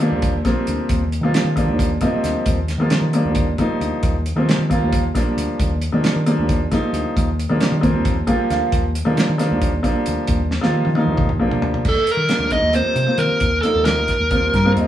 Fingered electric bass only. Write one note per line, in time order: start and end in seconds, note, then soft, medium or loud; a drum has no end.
0.00 0.13 D#3 medium
0.11 0.40 D#2 medium
0.45 0.54 A#1 medium
0.68 0.77 D2 medium
0.90 1.18 D#2 medium
1.21 1.41 D#3 medium
1.44 1.69 D#3 medium
1.67 1.96 D#2 medium
2.02 2.11 A#1 medium
2.24 2.33 D2 medium
2.46 2.75 D#2 medium
2.78 2.98 D#3 medium
3.01 3.26 D#3 medium
3.25 3.53 D#2 medium
3.59 3.68 A#1 medium
3.80 3.90 D2 medium
4.03 4.32 D#2 medium
4.36 4.55 D#3 medium
4.58 4.82 D#3 medium
4.80 5.09 D#2 medium
5.15 5.24 A#1 medium
5.37 5.47 D2 medium
5.60 5.88 D#2 medium
5.93 6.12 D#3 medium
6.16 6.40 D#3 medium
6.38 6.67 D#2 medium
6.72 6.81 A#1 medium
6.93 7.03 D2 medium
7.17 7.45 D#2 medium
7.50 7.69 D#3 medium
7.72 7.95 D#3 medium
7.93 8.22 D#2 medium
8.28 8.37 A#1 medium
8.50 8.60 D2 medium
8.72 9.01 D#2 medium
9.06 9.25 D#3 medium
9.29 9.53 D#3 medium
9.51 9.80 D#2 medium
9.84 9.94 A#1 medium
10.07 10.17 D2 medium
10.29 10.58 D#2 medium
10.64 10.83 D#3 medium
10.86 11.08 D#3 medium
11.07 11.36 D#2 medium
11.40 11.50 A#1 medium
11.62 11.72 D2 medium
11.85 11.95 D#2 medium
12.07 muted fingered electric bass stroke soft
12.17 12.27 D#3 medium
12.39 12.59 D2 medium
12.62 12.82 D#2 medium
12.96 13.06 C3 medium
13.18 13.28 D#3 medium
13.31 muted fingered electric bass stroke soft
13.41 13.61 D#2 medium
13.75 13.98 D#2 medium
13.98 14.07 D2 medium
14.20 14.49 D#2 medium
14.54 14.73 G2 medium
14.76 14.87 D#2 medium